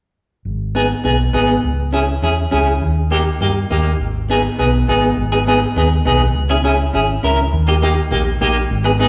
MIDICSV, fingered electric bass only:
0, 0, Header, 1, 2, 480
1, 0, Start_track
1, 0, Key_signature, 5, "minor"
1, 0, Tempo, 294551
1, 750, Time_signature, 4, 2, 24, 8
1, 14805, End_track
2, 0, Start_track
2, 0, Title_t, "Fingered electric bass"
2, 0, Program_c, 0, 33
2, 734, Note_on_c, 0, 32, 79
2, 1510, Note_off_c, 0, 32, 0
2, 1702, Note_on_c, 0, 35, 77
2, 2090, Note_off_c, 0, 35, 0
2, 2177, Note_on_c, 0, 32, 78
2, 2568, Note_off_c, 0, 32, 0
2, 2672, Note_on_c, 0, 37, 79
2, 3441, Note_off_c, 0, 37, 0
2, 3622, Note_on_c, 0, 40, 80
2, 4011, Note_off_c, 0, 40, 0
2, 4116, Note_on_c, 0, 37, 88
2, 4500, Note_off_c, 0, 37, 0
2, 4593, Note_on_c, 0, 39, 89
2, 5362, Note_off_c, 0, 39, 0
2, 5559, Note_on_c, 0, 43, 87
2, 5942, Note_off_c, 0, 43, 0
2, 6040, Note_on_c, 0, 39, 78
2, 6422, Note_off_c, 0, 39, 0
2, 6524, Note_on_c, 0, 32, 88
2, 7289, Note_off_c, 0, 32, 0
2, 7486, Note_on_c, 0, 35, 83
2, 7866, Note_off_c, 0, 35, 0
2, 7961, Note_on_c, 0, 32, 84
2, 8343, Note_off_c, 0, 32, 0
2, 8434, Note_on_c, 0, 32, 88
2, 9202, Note_off_c, 0, 32, 0
2, 9389, Note_on_c, 0, 39, 87
2, 9775, Note_off_c, 0, 39, 0
2, 9875, Note_on_c, 0, 35, 87
2, 10258, Note_off_c, 0, 35, 0
2, 10344, Note_on_c, 0, 37, 94
2, 11115, Note_off_c, 0, 37, 0
2, 11310, Note_on_c, 0, 32, 89
2, 11694, Note_off_c, 0, 32, 0
2, 11789, Note_on_c, 0, 37, 86
2, 12173, Note_off_c, 0, 37, 0
2, 12272, Note_on_c, 0, 39, 105
2, 13038, Note_off_c, 0, 39, 0
2, 13224, Note_on_c, 0, 34, 84
2, 13610, Note_off_c, 0, 34, 0
2, 13698, Note_on_c, 0, 34, 80
2, 14086, Note_off_c, 0, 34, 0
2, 14189, Note_on_c, 0, 32, 107
2, 14805, Note_off_c, 0, 32, 0
2, 14805, End_track
0, 0, End_of_file